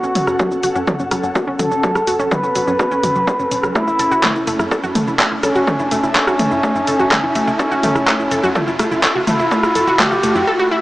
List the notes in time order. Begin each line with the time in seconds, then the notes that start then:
Already playing: C#4 F#4 A4 F#5 A5, riser
0.03 F#1 C#4, shaker
0.15 F#1 F#3, open hi-hat, mid tom, shaker
0.27 F#1 C#4, cross-stick, shaker
0.39 F#3, kick, shaker
0.51 F#1 C#4, shaker
0.63 F#1 F#4, open hi-hat, shaker
0.75 F#2 C#4, shaker
0.87 F#3, kick, mid tom, shaker
0.99 F#2 C#4, shaker
1.11 F#1 F#3, cross-stick, open hi-hat, shaker
1.23 F#1 C#4, shaker
1.35 F#4, kick, shaker
1.47 F#1 C#4
1.59 F#1 F#3 A4, open hi-hat, mid tom, shaker
1.71 F#1 C#4, shaker
1.83 F#3, kick, shaker
1.95 F#1 C#4, cross-stick, shaker
2.07 F#1 F#4, open hi-hat, shaker
2.19 F#1 C#4, shaker
2.31 F#3 B4, kick, mid tom, shaker
2.43 F#1 C#4, shaker
2.55 F#1 F#3, open hi-hat, shaker
2.67 F#2 C#4, shaker
2.79 F#4, kick, cross-stick, shaker
2.91 F#2 C#4, shaker
3.03 F#1 F#4, open hi-hat, mid tom, shaker
3.15 F#1 F#3, shaker
3.27 F#3, kick, shaker
3.39 F#1 C#4, shaker
3.51 E1 C#4, open hi-hat, shaker
3.63 F#1 F#3, cross-stick, shaker
3.75 A3 E4, kick, cross-stick, shaker
3.87 F#1 E4, shaker
3.99 F#1 A4, open hi-hat, shaker
4.11 F#1 F#4, shaker
4.23 A3, kick, clap, mid tom, shaker
4.30 A5
4.35 F#1 E4, shaker
4.45 F#1 A3 E5, open hi-hat, shaker
4.59 F#2 E4, cross-stick, shaker
4.71 A4, kick, shaker
4.83 F#2 F#4, shaker
4.95 F#1 A3, open hi-hat, mid tom, shaker
5.07 F#1 E4, shaker
5.19 A3, kick, clap, shaker
5.31 F#1 E4
5.43 F#1 C#4 A4, cross-stick, open hi-hat, shaker
5.55 F#1 F#4, shaker
5.67 A3, kick, mid tom, shaker
5.79 F#1 E4, shaker
5.91 F#1 A3, open hi-hat, shaker
6.03 F#1 E4, shaker
6.15 C#4 A4, kick, clap, shaker
6.27 F#1 F#4, cross-stick, shaker
6.39 F#1 A3, open hi-hat, mid tom, shaker
6.51 F#2 E4, shaker
6.63 A3, kick, shaker
6.75 F#2 E4, shaker
6.87 F#1 A4, open hi-hat, shaker
6.99 F#1 F#4, shaker
7.11 A3, kick, cross-stick, clap, mid tom, shaker
7.23 F#1 E4
7.35 F#1 A3, open hi-hat, shaker
7.47 F#1 E4, shaker
7.59 C#4 A4, kick, shaker
7.71 F#1 F#4, shaker
7.83 F#1 A3, open hi-hat, mid tom, shaker
7.95 F#1 E4, cross-stick, shaker
8.07 A3, kick, clap, shaker
8.19 F#1 E4, shaker
8.31 F#1 A4, open hi-hat, shaker
8.43 F#2 F#4, shaker
8.55 A3, kick, mid tom, shaker
8.67 F#2 E4, shaker
8.77 F#1 A3 F#5, cross-stick, open hi-hat, shaker
8.91 F#1 E4, shaker
9.03 A4, kick, clap, shaker
9.15 F#1 F#4
9.27 F#1 A3 E4, open hi-hat, mid tom, shaker
9.39 F#1 E4, shaker
9.51 A3, kick, shaker
9.63 F#1 E4, cross-stick, shaker
9.75 F#1 A4, open hi-hat, shaker
9.87 F#1 F#4, shaker
9.99 A3 G4, kick, clap, mid tom, shaker
10.11 F#1 E4, shaker
10.23 F#1 A3, open hi-hat, shaker
10.35 F#2 E4, shaker
10.47 A4
10.59 F#4
10.71 E4